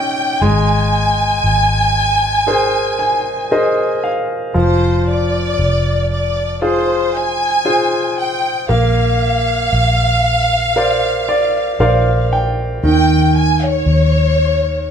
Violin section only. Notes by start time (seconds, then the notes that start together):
Already playing: G5
0.41 G#5
4.57 C5
5.09 D5
6.11 D5
6.63 C5
7.14 G#5
8.18 G5
8.70 F5
12.85 G5
13.37 G#5
13.63 C#5